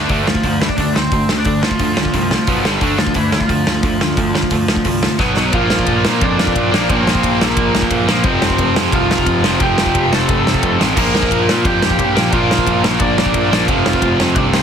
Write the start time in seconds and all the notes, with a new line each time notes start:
Already playing: D4
0.09 D2 D3 A3 D4, kick, open hi-hat
0.27 D2 D3 F3 A3 F4, snare
0.35 kick
0.43 D2 D3 A3, kick, open hi-hat
0.61 D3 E3 A3 E4, snare
0.68 D4 D5, kick
0.76 D2 D3 A3 D4 D5, kick, open hi-hat
0.93 D2 D3 A3 C4 C5, snare
1.12 D2 D3 A3, kick, open hi-hat
1.29 D2 D3 A3, snare
1.38 D4 D5
1.44 D2 D3 A3 D4 D5, kick, open hi-hat
1.62 D3 F3 A3 F4, snare
1.71 kick
1.79 D2 D3 A3, kick, open hi-hat
1.97 D2 D3 A3, snare
2.05 kick
2.14 C2 D3 A3, kick, open hi-hat
2.31 D3 A3, snare
2.47 B1 B2 F#3 B3, kick, open hi-hat
2.64 G1 G2 D3 G3, snare
2.81 D2 D3 A3 D4, kick, open hi-hat
2.98 D2 D3 F3 A3 F4, snare
3.07 kick
3.14 D2 D3 E3 A3 E4, kick, open hi-hat
3.32 D3 F3 A3 F4, snare
3.41 kick
3.49 D2 D3 A3, kick, open hi-hat
3.67 D2 D3 A3, snare
3.83 D2 D3 A3, kick, open hi-hat
4.00 D2 D3 A3, snare
4.17 D2 D3 A3, kick, open hi-hat
4.34 D3 A3, snare
4.43 kick
4.51 D2 D3 A3, kick, open hi-hat
4.68 D2 D3 A3, snare
4.76 kick
4.85 C2 D3 A3, kick, open hi-hat
5.02 D3 A3, snare
5.18 B1 B2 F#3 B3, kick, snare
5.36 B1 B2 F#3 B3, snare
5.52 A#1 A#2 F3 F4 F5, kick, ride
5.56 A#3
5.70 snare
5.79 kick
5.86 A#1, kick, ride
6.05 A#2, snare
6.21 F2 D4 D5, kick, ride
6.39 snare
6.47 kick
6.55 A#1, kick, ride
6.71 A#1 A#2 F3 A#3, snare
6.89 A#1 A#2 F3 C4 C5, kick, ride
6.93 A#3
7.07 snare
7.15 kick
7.23 A#1, kick, ride
7.41 A#3 A#4, snare
7.57 A#1, kick, ride
7.74 A#1, snare
7.82 kick
7.86 A4
7.91 A#1, kick, ride
8.07 A#1 A#2 F3 A#3, snare
8.23 F1 F2 C3 F3 C4 C5, kick, ride
8.42 snare
8.50 kick
8.58 F1, kick, ride
8.76 F2, snare
8.92 C2 F4 F5, kick, ride
9.11 snare
9.18 kick
9.26 F1, kick, ride
9.43 F1 C3 F3, snare
9.47 F2
9.59 F1 F2 C3 F3 G4, kick, ride
9.63 G5
9.78 snare
9.86 kick
9.95 F1, kick, ride
10.12 A4 A5, snare
10.29 F1, kick, ride
10.46 F1, snare
10.54 kick
10.63 F1, kick, ride
10.79 A1 F2 C3 F3, snare
10.95 A#1 A#2 F3 A#3 A#5, kick, crash
10.99 A#4
11.15 snare
11.23 kick
11.31 A#1, kick, ride
11.48 A#2, snare
11.65 F2 G4 G5, kick, ride
11.82 snare
11.90 kick
11.99 A#1, kick, ride
12.15 A#1 A#2 F3 A#3, snare
12.32 A#1 A#2 F3 A#3 F4 F5, kick, ride
12.51 snare
12.58 kick
12.67 A#1, kick, ride
12.84 snare
13.00 A#1 D4 D5, kick, ride
13.18 A#1, snare
13.26 kick
13.34 A#1, kick, ride
13.52 A#1 A#2 F3 A#3, snare
13.67 F1 F2 C3 F3 F4 F5, kick, ride
13.86 snare
13.93 kick
14.02 F1, kick, ride
14.19 F2, snare
14.36 C2 D4 D5, kick, ride
14.54 C4 C5, snare